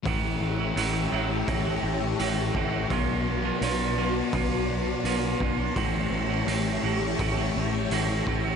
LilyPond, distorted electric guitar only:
\new Staff \with { instrumentName = "Distorted electric guitar" } { \clef bass \time 4/4 \key a \mixolydian \tempo 4 = 84 <a, e a>8 <a, e a>16 <e a>16 <a, e a>8 <a, e a>16 <e a>8 <e a>16 <a, e a>16 <e a>16 <a, e a>16 <e a>16 <a, e a>8 | <b, fis b>8 <b, fis b>16 <fis b>16 <b, fis b>8 <b, fis b>16 <fis b>8 <fis b>16 <b, fis b>16 <fis b>16 <b, fis b>16 <fis b>16 <b, fis b>8 | <a, e a>8 <a, e a>16 <e a>16 <a, e a>8 <a, e a>16 <e a>8 <e a>16 <a, e a>16 <e a>16 <a, e a>16 <e a>16 <a, e a>8 | }